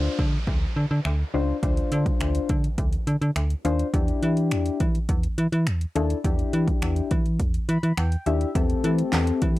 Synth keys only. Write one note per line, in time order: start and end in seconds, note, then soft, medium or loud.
0.00 0.22 D4 medium
0.00 0.22 F4 medium
0.00 0.22 C5 medium
1.34 1.56 D4 medium
1.34 1.56 F4 medium
1.34 1.57 C5 loud
1.63 2.52 D4 medium
1.63 2.52 F4 medium
1.63 2.53 C5 medium
3.65 3.87 D4 medium
3.65 3.87 F4 medium
3.65 3.87 C5 medium
3.93 4.83 D4 medium
3.93 4.83 E4 medium
3.93 4.83 G4 loud
5.95 6.18 D4 medium
5.95 6.18 E4 medium
5.95 6.18 A4 medium
6.24 7.14 D4 medium
6.24 7.14 E4 medium
6.24 7.14 G4 medium
7.69 7.96 B5 medium
7.98 8.24 G5 medium
8.26 8.49 D4 medium
8.26 8.49 E4 medium
8.26 8.49 G4 medium
8.26 8.53 E5 medium
8.55 9.45 C4 medium
8.55 9.45 G4 medium
8.55 9.45 A4 medium